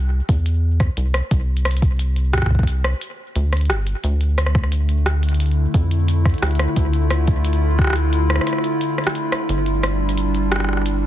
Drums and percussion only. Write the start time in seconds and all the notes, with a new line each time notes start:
0.29 kick, closed hi-hat
0.46 closed hi-hat
0.80 kick, cross-stick, closed hi-hat
0.97 closed hi-hat
1.14 cross-stick, closed hi-hat
1.31 kick, closed hi-hat
1.57 closed hi-hat
1.65 cross-stick, closed hi-hat
1.71 closed hi-hat
1.77 closed hi-hat
1.82 kick, closed hi-hat
1.99 closed hi-hat
2.16 closed hi-hat
2.33 kick, cross-stick, closed hi-hat
2.38 kick, cross-stick
2.42 kick, cross-stick
2.46 kick, cross-stick
2.51 kick
2.55 kick
2.59 kick
2.63 kick
2.67 closed hi-hat
2.84 cross-stick
3.01 closed hi-hat
3.36 closed hi-hat
3.53 cross-stick, closed hi-hat
3.57 closed hi-hat
3.61 closed hi-hat
3.65 closed hi-hat
3.70 cross-stick, closed hi-hat
3.87 closed hi-hat
4.04 closed hi-hat
4.21 closed hi-hat
4.38 cross-stick, closed hi-hat
4.46 cross-stick
4.55 kick, cross-stick
4.64 cross-stick
4.72 closed hi-hat
4.89 closed hi-hat
5.06 cross-stick, closed hi-hat
5.23 closed hi-hat
5.29 closed hi-hat
5.34 closed hi-hat
5.40 closed hi-hat
5.46 closed hi-hat
5.51 closed hi-hat
5.74 kick, closed hi-hat
5.91 closed hi-hat
6.08 closed hi-hat
6.25 kick, cross-stick, closed hi-hat
6.30 closed hi-hat
6.34 closed hi-hat
6.38 closed hi-hat
6.42 cross-stick, closed hi-hat
6.47 closed hi-hat
6.51 closed hi-hat
6.55 closed hi-hat
6.59 cross-stick, closed hi-hat
6.76 kick, closed hi-hat
6.93 closed hi-hat
7.10 cross-stick, closed hi-hat
7.28 kick, closed hi-hat
7.45 closed hi-hat
7.53 closed hi-hat
7.79 kick, cross-stick
7.82 cross-stick
7.84 cross-stick
7.87 cross-stick
7.90 cross-stick
7.93 cross-stick, closed hi-hat
8.13 closed hi-hat
8.30 cross-stick
8.36 cross-stick
8.41 cross-stick
8.47 cross-stick, closed hi-hat
8.53 cross-stick
8.58 cross-stick
8.64 closed hi-hat
8.81 closed hi-hat
8.98 cross-stick, closed hi-hat
9.04 cross-stick, closed hi-hat
9.10 closed hi-hat
9.15 closed hi-hat
9.32 cross-stick, closed hi-hat
9.49 closed hi-hat
9.66 closed hi-hat
9.83 cross-stick, closed hi-hat
10.09 closed hi-hat
10.18 closed hi-hat
10.35 closed hi-hat
10.52 cross-stick
10.56 cross-stick
10.60 cross-stick
10.64 cross-stick
10.69 cross-stick
10.73 cross-stick
10.77 cross-stick
10.82 cross-stick
10.86 closed hi-hat